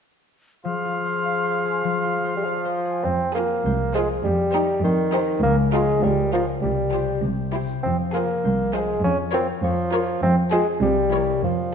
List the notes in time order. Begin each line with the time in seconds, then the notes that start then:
0.64 F3 G#4 F5 C6
0.85 F4
1.05 C5
1.25 F5
1.45 C5
1.65 G#4
1.84 F3
2.04 F4
2.25 C5
2.37 G3
2.44 F3 F5
2.65 C5
2.85 G#4
3.05 F2 F3 C4
3.35 A#3 F4 G#4 C5
3.64 C2 C5
3.94 G#3 F4 G#4 C5
4.24 F2 F3 G3
4.53 D#4 G4 C5
4.84 F2 D#3 C5
5.13 D#4 G4 C5
5.43 C#2 C#3 A#3
5.72 G#3 C#4 F4 A#4
6.02 C#2 G3 A#4
6.33 F3 C#4 F4 A#4
6.62 C2 C3 G3
6.93 F4 G4 C5
7.23 C2 C3
7.54 E4 G4 C5
7.83 F2 F3 C4
8.13 A#3 F4 G#4 C5
8.44 C2 C5
8.73 G#3 F4 G#4 C5
9.04 F2 F3 C#4
9.33 C4 F4 A#4 C#5
9.63 F2 F3 C#5
9.93 F4 A#4 C#5
10.22 F2 F3 C4
10.52 G#3 F4 G#4 C5
10.82 C2 C3 G3
11.13 E4 A#4 C#5
11.43 F2 F3